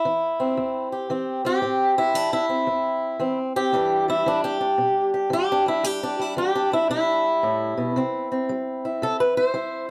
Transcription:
steel-string acoustic guitar
Already playing: E4
0.05 E3
0.40 C4
0.57 E2
0.92 G4
1.10 E3 C4
1.45 C4 G4
1.62 A2 C4
1.98 E4
2.14 E3 D4
2.33 E4
2.49 C4
2.67 E2
3.20 E3 C4
3.56 C4 G4
3.72 E2 E3 G3 D4
4.08 G3 E4
4.26 E3 D4
4.44 G4
4.61 D4
4.78 B2
5.14 G4
5.30 E3 G4
5.52 D4
5.66 G3 E4
5.84 E2 G4
6.03 D4
6.19 G3 E4
6.37 E3 G4
6.55 D4
6.72 G3 E4
6.89 B2 E4
7.43 A2
7.77 B2
7.96 C3 C4
8.32 C4
8.49 G3
8.85 E4
9.02 C3 A4
9.20 B4
9.37 E4 C5
9.54 G3 E4

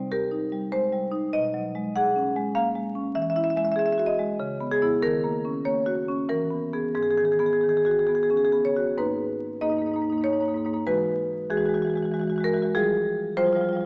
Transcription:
marimba
Already playing: C3 G3
0.11 G4 A#4
0.32 D#4
0.52 G3
0.72 G#3 C5
0.92 G3
1.12 D#4
1.33 B2 D#5
1.54 F#3
1.75 G#3
1.96 G#4 F#5
2.16 C#4
2.36 G#3
2.55 A#3 F5
2.75 G#3
2.95 C#4
3.15 E3 E5
3.22 E5
3.30 E5
3.36 E4 E5
3.44 E5
3.50 E5
3.56 G#3 E5
3.65 E5
3.72 E5
3.76 G#4 E5
3.86 E5
3.92 E5
3.98 F#4 E5
4.06 D#5
4.19 G#3
4.40 C#3
4.61 B3
4.71 G#4
4.82 B3 E4
5.02 D#3 A#4
5.24 A#3
5.45 C#4
5.65 A#3 C#5
5.86 F#4
6.08 C#4
6.29 E3 A#4
6.50 B3
6.73 B3 G#4
6.95 G#2 G#4
7.03 G#4
7.10 G#4
7.18 D#3 G#4
7.25 G#4
7.32 G#4
7.39 B3 G#4
7.46 G#4
7.53 G#4
7.61 D#3 G#4
7.69 G#4
7.77 G#4
7.85 F#4 G#4
7.91 G#4
7.99 G#4
8.07 B3 G#4
8.15 G#4
8.23 G#4
8.30 C#4 G#4
8.37 G#4
8.45 G#4
8.52 B3 G#4
8.65 C#5
8.76 F#4
8.98 G#2 A#3 D#4 B4
9.61 G#2 A#3 D#4 D#5
9.70 G#2 A#3 D#4
9.77 A#3 D#4
9.82 G#2
9.86 A#3 D#4
9.92 G#2 D#4
9.96 A#3
10.01 G#2 A#3 D#4
10.10 G#2 A#3 D#4
10.18 A#3 D#4
10.22 G#2 D#4 C#5
10.30 G#2 A#3 D#4
10.40 G#2 A#3 D#4
10.48 A#3 D#4
10.54 G#2 A#3 D#4
10.65 G#2 A#3 D#4
10.73 G#2 A#3 D#4
10.86 E3 G#3 F#4 B4
11.50 E3 G#3 F#4 G#4
11.57 E3 G#3 F#4
11.66 E3 G#3 F#4
11.74 E3 G#3 F#4
11.82 E3 F#4
11.87 G#3 F#4
11.94 E3 G#3 F#4
12.02 E3 G#3 F#4
12.12 E3 G#3 F#4
12.20 E3 G#3 F#4
12.28 E3 F#4
12.32 E3 G#3
12.38 G#3 F#4
12.44 E3 G#3 F#4 A#4
12.53 E3 G#3 F#4
12.62 E3 G#3 F#4
12.75 F3 G3 F4 G#4
13.37 F3 G3 F4 C5
13.44 F3 G3 F4
13.53 F3 G3 F4
13.61 G3 F4
13.65 F3 F4
13.73 F3 G3
13.77 G3 F4

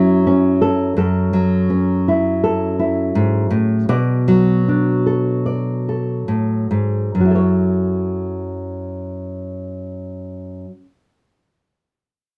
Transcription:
nylon-string guitar
Already playing: F#2 F#3 C#4 E4 A4
0.27 C#4
0.61 A4
0.97 F#2 A4
1.33 F#3
1.70 C#4
2.08 E4
2.44 A4
2.79 E4
3.15 G#2
3.50 A2
3.89 B2 D5
4.28 F#3
4.68 D4
5.06 A4
5.46 D5
5.89 A4
6.28 A2
6.71 G#2
7.15 F#2
7.20 F#3
7.25 E4
7.31 A4
7.35 C#5

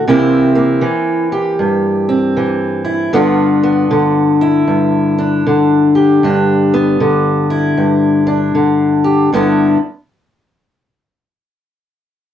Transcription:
steel-string acoustic guitar
0.08 C3 E3 A#3 C4 E4
0.55 A#3
0.81 E3
1.32 G4
1.59 G2
2.09 C4
2.37 E3
2.85 E4
3.13 G2 D3 B3 D4 F4
3.63 B3
3.91 D3
4.41 E4
4.68 G2
5.18 D4
5.47 D3
5.95 G4
6.23 G2 D4
6.74 B3
7.00 D3
7.50 E4
7.78 G2
8.27 D4
8.55 D3
9.04 G4
9.33 G2 D3 B3 D4 E4

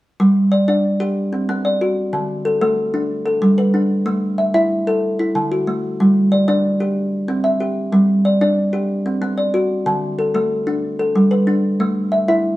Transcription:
kalimba
0.20 G3
0.52 D5
0.68 D4 D5
1.00 G4
1.33 C4
1.49 B3
1.65 D5
1.81 F#4
2.13 D3
2.45 A4
2.61 A3 A4
2.94 D4
3.26 A4
3.42 G3
3.58 B4
3.74 D4
4.06 A3
4.38 E5
4.54 E4 E5
4.87 A4
5.19 E4
5.35 D3
5.52 F#4
5.67 A3
6.00 G3
6.32 D5
6.48 D4 D5
6.80 G4
7.28 C4
7.44 E5
7.60 G4
7.93 G3
8.25 D5
8.41 D4 D5
8.73 G4
9.06 C4
9.22 B3
9.38 D5
9.54 F#4
9.86 D3
10.19 A4
10.34 A3 A4
10.67 D4
10.99 A4
11.15 G3
11.31 B4
11.47 D4
11.80 A3
12.12 E5
12.28 E4 E5

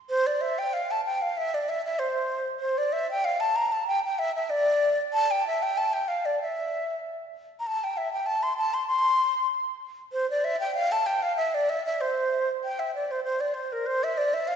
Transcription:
flute
0.10 C5
0.27 D5
0.41 E5
0.59 G5
0.73 F5
0.91 A5
1.05 G5
1.22 F5
1.37 E5
1.54 D5
1.69 E5
1.85 E5
1.99 C5
2.60 C5
2.78 D5
2.93 E5
3.11 G5
3.25 F5
3.40 A5
3.56 A#5
3.72 A5
3.87 G5
4.05 G5
4.19 E5
4.35 E5
4.50 D5
5.13 A5
5.31 G5
5.47 E5
5.62 G5
5.78 A5
5.93 G5
6.08 F5
6.25 D5
6.42 E5
7.60 A#5
7.67 A5
7.84 G5
7.97 E5
8.13 G5
8.26 A5
8.43 C6
8.57 A5
8.74 C6
8.87 C6
10.13 C5
10.30 D5
10.44 E5
10.60 G5
10.75 F5
10.92 A5
11.06 G5
11.22 F5
11.37 E5
11.54 D5
11.69 E5
11.86 E5
12.01 C5
12.64 G5
12.79 E5
12.95 D5
13.11 C5
13.24 C5
13.41 D5
13.54 C5
13.72 A#4
13.86 C5
14.04 E5
14.18 D5
14.34 E5
14.48 F5

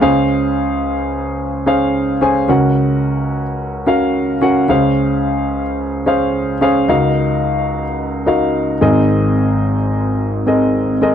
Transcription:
grand piano
0.01 C#2 C#3 C#4 G#4 C5 F5
1.66 C#4 G#4 C5 F5
2.21 C#4 G#4 C5 G#5
2.48 C#2 C#3 C#4 F#4 A#4 F#5
3.86 C#4 F#4 A#4 F5
4.41 C#4 F#4 A#4 F#5
4.68 C#2 C#3 C#4 G#4 C5 F5
6.06 C#4 G#4 C5 F5
6.61 C#4 G#4 C5 F5
6.88 C#2 C#3 D#4 F#4 A#4 F5
8.26 D#4 F#4 A#4 F5
8.81 G#1 G#2 C4 G#4 A#4 D#5
10.47 C4 G#4 A#4 D#5
11.01 C4 G#4 A#4 D#5

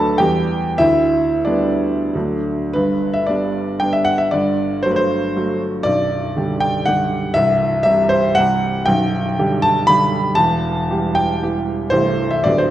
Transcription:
grand piano
Already playing: D2 F#3 A3 D4 A4 B4 A5 B5
0.18 E2 G3 B3 G4 G5
0.78 D2 E4 E5
1.45 G3 B3 D4 D5
2.15 D2 F#3 A3 D4
2.73 G1 G2 B4
3.14 E5
3.27 G3 B3 D4 D5
3.80 G3 B3 D4 G5
3.93 E5
4.05 F#5
4.18 E5
4.31 G1 G2 D5
4.83 F#3 A3 F#4 C5
4.91 B4
4.96 C5
5.36 F#3 A3 F#4
5.83 B0 B1 D5
6.37 D3 G3 G4
6.60 G5
6.86 D3 G3 G4 F#5
7.34 C1 C2 E5
7.83 C3 G3 G4 E5
8.09 C5
8.35 C3 G3 G4 F#5
8.86 B0 B1 G5
9.39 D3 G3 G4
9.62 A5
9.87 D3 G3 G4 B5
10.35 E1 E2 A5
10.90 E3 G3 G4
11.15 G5
11.43 E3 G3 G4
11.90 C1 C2 E3 A3 G4 C5
12.31 E5
12.44 D1 D2 D3 B3 G4 D5
12.58 C5

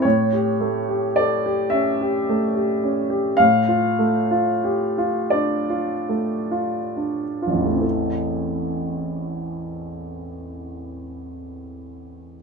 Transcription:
grand piano
0.02 A2 C#5
0.33 G4
0.60 A3
0.89 G4
1.16 A4 D5
1.46 G4
1.70 C#4 E5
2.01 G4
2.29 A3
2.55 G4
2.84 C#4
3.10 G4
3.37 A2 F5
3.68 F4
3.99 A3
4.31 F4
4.64 G4
4.98 F4
5.30 D4 D5
5.69 F4
6.09 A3
6.51 F4
6.97 D4
7.42 F4
7.47 A1
7.53 E2
7.60 E3
7.65 A3
7.72 C4
7.78 E4 A4

